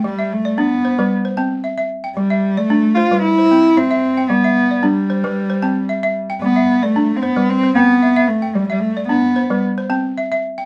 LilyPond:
<<
  \new Staff \with { instrumentName = "Balafon" } { \time 4/4 \key g \major \tempo 4 = 113 << { g''16 e''8 d''8. c''16 b'8 c''16 a''8 e''8. g''16~ | g''16 e''8 d''8. c''16 b'8 c''8. e''8. g''16~ | g''16 e''8 d''8. c''16 b'8 c''16 a''8 e''8. g''16~ | g''16 e''8 d''8. c''16 b'8 c''8. e''8. g''16~ |
g''16 e''8 d''8. c''16 b'8 c''16 a''8 e''8. g''16 | } \\ { g8 r8 d'8 r16 g16 r8 c'8 r16 e''8 r16 | g8 r8 d'8 r16 g16 r8 c'8 r16 e''8 r16 | g8 r8 d'8 r16 g16 r8 c'8 r16 e''8 r16 | g8 r8 d'8 r16 g16 r8 c'8 r16 e''8 r16 |
g8 r8 d'8 r16 g16 r8 c'8 r16 e''8 r16 | } >> }
  \new Staff \with { instrumentName = "Cello" } { \time 4/4 \key g \major g8 a8 b4 r2 | g8. a8. f'8 e'4 c'4 | b4 g2~ g8 r8 | b8. a8~ a32 c'32 b8 c'8 b4 a8 |
g32 g32 g16 a8 b4 r2 | }
>>